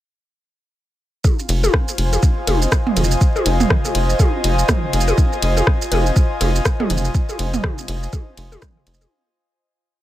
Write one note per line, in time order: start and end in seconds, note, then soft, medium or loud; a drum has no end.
1.24 9.11 F4 medium
1.24 kick loud
1.24 high tom soft
1.24 shaker medium
1.39 9.11 C5 medium
1.39 9.11 G#5 medium
1.39 shaker soft
1.49 1.68 F1 loud
1.49 closed hi-hat medium
1.49 ride medium
1.49 shaker soft
1.64 high tom medium
1.64 shaker soft
1.74 kick loud
1.74 cross-stick loud
1.88 shaker medium
1.98 2.18 F1 medium
1.98 closed hi-hat medium
1.98 ride medium
2.09 9.11 D#5 medium
2.09 high tom soft
2.09 shaker soft
2.23 kick loud
2.23 shaker medium
2.47 2.67 F1 medium
2.47 closed hi-hat medium
2.47 high tom medium
2.47 ride medium
2.47 shaker soft
2.62 shaker soft
2.72 kick loud
2.72 cross-stick loud
2.72 closed hi-hat soft
2.72 shaker medium
2.87 mid tom loud
2.96 3.16 F1 medium
2.96 closed hi-hat medium
2.96 high tom soft
2.96 ride medium
2.96 shaker soft
3.04 shaker soft
3.11 shaker soft
3.21 kick loud
3.21 shaker medium
3.36 high tom medium
3.36 shaker soft
3.46 3.65 F1 loud
3.46 closed hi-hat medium
3.46 ride medium
3.46 shaker soft
3.60 mid tom loud
3.60 shaker soft
3.70 kick loud
3.70 cross-stick loud
3.85 high tom soft
3.85 shaker medium
3.95 4.14 F1 medium
3.95 closed hi-hat loud
3.95 ride medium
4.10 shaker soft
4.19 kick loud
4.19 high tom medium
4.19 shaker medium
4.44 4.63 F1 medium
4.44 closed hi-hat loud
4.44 ride medium
4.44 shaker soft
4.59 shaker soft
4.69 kick loud
4.69 cross-stick loud
4.69 closed hi-hat soft
4.69 mid tom medium
4.69 high tom soft
4.69 shaker medium
4.93 5.13 F1 loud
4.93 closed hi-hat medium
4.93 ride medium
4.93 shaker soft
5.01 shaker soft
5.08 high tom medium
5.08 shaker soft
5.18 kick loud
5.18 shaker soft
5.33 shaker soft
5.42 5.62 F1 loud
5.42 closed hi-hat medium
5.42 ride medium
5.42 shaker soft
5.57 high tom soft
5.57 shaker soft
5.67 kick loud
5.67 cross-stick medium
5.82 shaker medium
5.92 6.11 F1 medium
5.92 closed hi-hat loud
5.92 high tom medium
5.92 ride medium
6.06 shaker soft
6.16 kick loud
6.16 shaker medium
6.41 6.60 F1 medium
6.41 closed hi-hat medium
6.41 high tom medium
6.41 ride medium
6.41 shaker soft
6.55 shaker soft
6.65 kick loud
6.65 cross-stick loud
6.65 closed hi-hat soft
6.65 shaker medium
6.80 mid tom loud
6.80 high tom medium
6.90 7.09 F1 loud
6.90 closed hi-hat medium
6.90 ride medium
6.90 shaker soft
6.97 shaker soft
7.05 shaker soft
7.15 kick loud
7.15 shaker soft
7.29 high tom soft
7.29 shaker soft
7.39 7.59 F1 loud
7.39 closed hi-hat loud
7.39 ride medium
7.39 shaker soft
7.54 mid tom loud
7.54 shaker soft
7.64 kick loud
7.64 cross-stick loud
7.64 high tom medium
7.78 shaker medium
7.88 8.08 F1 medium
7.88 closed hi-hat loud
7.88 ride medium
8.03 shaker soft
8.13 kick loud
8.13 high tom soft
8.13 shaker medium
8.37 8.57 F1 medium
8.37 closed hi-hat medium
8.37 ride medium
8.37 shaker soft
8.52 high tom medium
8.52 shaker soft
8.62 kick loud
8.62 cross-stick loud
8.62 closed hi-hat soft
8.62 mid tom medium
8.62 shaker medium
8.87 9.06 F1 loud
8.87 closed hi-hat loud
8.87 ride medium
8.87 shaker soft
8.94 shaker soft
9.01 high tom soft
9.01 shaker soft